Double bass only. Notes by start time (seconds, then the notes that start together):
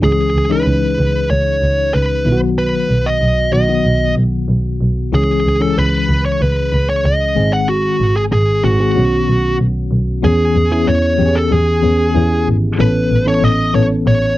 0.03 C#2
0.34 C#2
0.66 C#2
0.98 C#2
1.30 C#2
1.62 C#2
1.94 C#2
2.26 B1
2.89 B1
3.21 B1
3.53 B1
3.85 B1
4.17 B1
4.48 B1
4.81 B1
5.13 C#2
5.45 C#2
5.77 C#2
6.09 C#2
6.41 C#2
6.72 C#2
7.04 C#2
7.36 G#1
8.00 G#1
8.31 G#1
8.64 G#1
8.96 B1
9.28 B1
9.59 B1
9.91 B1
10.23 E2
10.55 E2
10.87 E2
11.19 E2
11.51 E2
11.83 E2
12.15 E2
12.47 G#1
12.79 A1
13.11 A1
13.42 A1
13.74 A1
14.06 A1